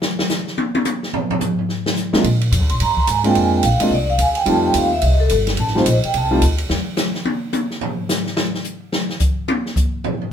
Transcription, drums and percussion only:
0.02 snare medium
0.19 snare loud
0.29 snare loud
0.29 hi-hat pedal medium
0.47 snare soft
0.58 high tom loud
0.75 high tom loud
0.85 hi-hat pedal medium
0.85 high tom medium
1.03 snare soft
1.13 floor tom loud
1.30 floor tom loud
1.41 floor tom loud
1.41 hi-hat pedal medium
1.59 floor tom soft
1.69 snare soft
1.86 snare loud
1.96 snare soft
1.96 hi-hat pedal medium
2.13 snare loud
2.24 ride medium
2.41 ride medium
2.52 hi-hat pedal medium
2.52 ride medium
2.69 ride soft
2.80 ride medium
2.97 kick medium
3.07 hi-hat pedal medium
3.07 ride medium
3.24 ride medium
3.35 ride medium
3.63 hi-hat pedal medium
3.63 ride medium
3.80 ride medium
4.19 hi-hat pedal medium
4.19 ride medium
4.35 ride medium
4.46 ride medium
4.74 hi-hat pedal medium
4.74 ride medium
5.02 ride medium
5.29 hi-hat pedal medium
5.29 ride medium
5.47 snare medium
5.47 ride soft
5.57 ride medium
5.67 snare soft
5.77 snare medium
5.86 hi-hat pedal medium
5.86 ride medium
6.03 ride soft
6.14 ride medium
6.42 hi-hat pedal medium
6.42 ride medium
6.58 ride medium
6.70 snare loud
6.97 snare loud
6.97 hi-hat pedal medium
7.14 snare soft
7.25 high tom loud
7.53 hi-hat pedal medium
7.53 high tom loud
7.70 snare soft
7.81 floor tom loud
8.09 snare loud
8.09 hi-hat pedal medium
8.26 snare soft
8.37 snare loud
8.54 snare soft
8.64 hi-hat pedal medium
8.92 snare loud
9.09 snare soft
9.20 kick medium
9.20 hi-hat pedal medium
9.48 high tom loud
9.66 snare soft
9.76 kick medium
9.76 hi-hat pedal medium
10.04 floor tom loud
10.21 floor tom soft

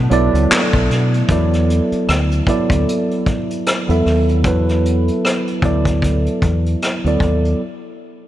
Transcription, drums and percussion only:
0.11 closed hi-hat medium
0.35 closed hi-hat medium
0.51 snare loud
0.51 clap medium
0.51 closed hi-hat medium
0.73 kick medium
0.73 closed hi-hat soft
0.91 snare soft
0.91 closed hi-hat medium
1.14 closed hi-hat soft
1.29 kick loud
1.29 closed hi-hat medium
1.53 cross-stick soft
1.53 closed hi-hat soft
1.70 closed hi-hat medium
1.92 closed hi-hat soft
2.09 cross-stick medium
2.09 closed hi-hat medium
2.32 closed hi-hat soft
2.47 kick medium
2.47 closed hi-hat medium
2.70 kick medium
2.70 closed hi-hat medium
2.89 closed hi-hat medium
3.11 closed hi-hat soft
3.26 kick medium
3.26 closed hi-hat medium
3.50 closed hi-hat soft
3.66 cross-stick medium
3.66 closed hi-hat medium
3.90 closed hi-hat soft
4.06 cross-stick soft
4.06 open hi-hat soft
4.29 closed hi-hat soft
4.44 kick loud
4.44 closed hi-hat medium
4.69 cross-stick soft
4.69 closed hi-hat soft
4.86 closed hi-hat medium
5.08 closed hi-hat soft
5.25 cross-stick medium
5.25 closed hi-hat medium
5.47 closed hi-hat soft
5.62 kick medium
5.62 closed hi-hat medium
5.85 kick medium
5.85 closed hi-hat soft
6.02 kick medium
6.02 closed hi-hat medium
6.26 closed hi-hat soft
6.42 kick medium
6.42 closed hi-hat medium
6.66 closed hi-hat soft
6.82 cross-stick medium
6.82 closed hi-hat medium
7.06 closed hi-hat soft
7.20 kick medium
7.20 closed hi-hat soft
7.45 closed hi-hat soft

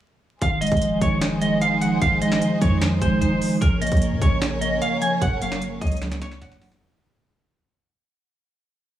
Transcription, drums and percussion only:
0.42 kick loud
0.42 closed hi-hat medium
0.62 closed hi-hat medium
0.67 closed hi-hat medium
0.72 kick medium
0.72 closed hi-hat medium
0.77 closed hi-hat soft
0.82 closed hi-hat medium
1.01 kick loud
1.01 closed hi-hat medium
1.21 snare loud
1.21 closed hi-hat medium
1.42 closed hi-hat medium
1.62 closed hi-hat medium
1.82 closed hi-hat medium
2.02 kick loud
2.02 closed hi-hat medium
2.22 closed hi-hat medium
2.32 snare medium
2.42 closed hi-hat medium
2.61 kick loud
2.61 closed hi-hat medium
2.82 snare loud
2.82 closed hi-hat medium
3.02 kick medium
3.02 closed hi-hat loud
3.22 closed hi-hat medium
3.42 open hi-hat medium
3.62 kick loud
3.62 closed hi-hat medium
3.82 closed hi-hat medium
3.87 closed hi-hat medium
3.92 kick medium
3.92 closed hi-hat medium
3.97 closed hi-hat soft
4.02 closed hi-hat medium
4.22 kick loud
4.22 closed hi-hat medium
4.42 snare loud
4.42 closed hi-hat medium
4.62 closed hi-hat medium
4.82 closed hi-hat medium
5.02 closed hi-hat medium
5.22 kick loud
5.22 closed hi-hat medium
5.42 closed hi-hat medium
5.52 snare medium
5.62 closed hi-hat medium
5.81 kick loud
5.81 closed hi-hat medium
5.87 closed hi-hat medium
5.92 closed hi-hat medium
5.97 closed hi-hat medium
6.02 snare medium
6.02 closed hi-hat soft
6.12 snare medium
6.12 closed hi-hat medium
6.22 snare medium
6.22 closed hi-hat loud
6.32 snare medium
6.42 snare loud
6.42 closed hi-hat medium
6.52 snare medium
6.62 snare loud
6.62 open hi-hat medium
6.72 snare loud

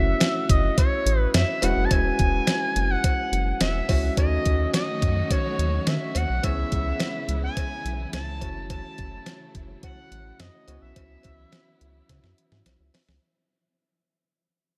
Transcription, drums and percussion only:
0.20 snare loud
0.20 closed hi-hat medium
0.20 cowbell medium
0.49 kick medium
0.49 closed hi-hat medium
0.78 kick loud
0.78 closed hi-hat loud
0.78 cowbell medium
1.07 closed hi-hat medium
1.34 snare loud
1.34 closed hi-hat loud
1.34 cowbell medium
1.62 closed hi-hat medium
1.62 cowbell medium
1.91 kick loud
1.91 closed hi-hat medium
1.91 cowbell medium
2.19 kick medium
2.19 closed hi-hat medium
2.47 snare loud
2.47 closed hi-hat medium
2.47 cowbell medium
2.76 closed hi-hat medium
3.04 kick loud
3.04 closed hi-hat loud
3.04 cowbell medium
3.33 closed hi-hat medium
3.61 snare loud
3.61 closed hi-hat loud
3.61 cowbell medium
3.89 kick loud
3.89 open hi-hat medium
3.89 cowbell medium
4.17 kick loud
4.17 closed hi-hat medium
4.17 cowbell medium
4.45 kick medium
4.45 closed hi-hat medium
4.74 snare loud
4.74 closed hi-hat medium
4.74 cowbell medium
5.02 kick loud
5.02 closed hi-hat medium
5.31 kick loud
5.31 closed hi-hat medium
5.31 cowbell medium
5.59 closed hi-hat medium
5.87 snare loud
5.87 closed hi-hat loud
5.87 cowbell medium
6.15 closed hi-hat medium
6.15 cowbell medium
6.43 kick loud
6.43 closed hi-hat medium
6.43 cowbell medium
6.72 kick medium
6.72 closed hi-hat medium
7.00 snare loud
7.00 closed hi-hat medium
7.00 cowbell medium
7.29 closed hi-hat medium
7.57 kick loud
7.57 closed hi-hat loud
7.57 cowbell medium
7.86 closed hi-hat medium
8.13 snare loud
8.13 closed hi-hat loud
8.13 cowbell medium
8.41 kick loud
8.41 closed hi-hat medium
8.41 cowbell medium
8.70 kick loud
8.70 closed hi-hat loud
8.70 cowbell medium
8.98 kick medium
8.98 closed hi-hat medium
9.26 snare loud
9.26 closed hi-hat medium
9.26 cowbell medium
9.55 kick medium
9.55 closed hi-hat medium
9.83 kick loud
9.83 closed hi-hat loud
9.83 cowbell medium
10.12 closed hi-hat medium
10.40 snare loud
10.40 closed hi-hat loud
10.40 cowbell medium
10.68 closed hi-hat medium
10.68 cowbell medium
10.96 kick loud
10.96 closed hi-hat loud
10.96 cowbell medium
11.23 kick medium
11.23 closed hi-hat medium
11.23 cowbell medium
11.52 snare loud
11.52 closed hi-hat medium
11.52 cowbell medium
11.81 closed hi-hat medium
12.09 kick loud
12.09 snare medium
12.09 closed hi-hat loud
12.09 cowbell medium
12.24 snare medium
12.38 closed hi-hat medium
12.52 snare medium
12.66 snare loud
12.66 closed hi-hat loud
12.66 cowbell medium
12.94 snare loud
12.94 open hi-hat medium
12.94 cowbell medium
13.09 snare medium

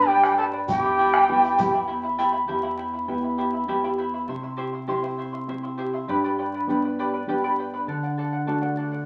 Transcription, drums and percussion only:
0.24 bombo rim medium
0.24 shaker soft
0.38 bombo rim soft
0.68 bombo low medium
0.68 shaker medium
1.14 bombo rim medium
1.44 shaker soft
1.59 bombo low medium
1.59 shaker medium
2.19 shaker soft

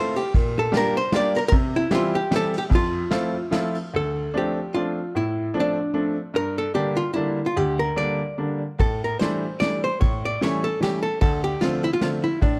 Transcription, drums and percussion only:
0.16 ride medium
0.34 kick medium
0.34 ride medium
0.74 snare medium
0.74 ride medium
1.12 snare medium
1.12 ride medium
1.35 ride medium
1.52 kick medium
1.52 ride soft
1.91 snare medium
1.91 ride medium
2.32 snare medium
2.32 ride soft
2.54 ride medium
2.71 kick medium
2.71 ride medium
3.11 snare medium
3.11 ride soft
3.52 snare medium
3.52 ride soft
3.75 ride soft
8.79 kick medium
8.79 ride soft
9.21 snare medium
9.21 ride soft
9.61 snare medium
9.61 ride soft
10.02 kick medium
10.02 ride soft
10.42 snare medium
10.42 ride soft
10.83 snare medium
10.83 ride soft
11.22 kick medium
11.22 ride soft
11.62 snare medium
11.62 ride medium
12.01 snare medium
12.01 ride soft
12.42 kick medium
12.42 ride soft

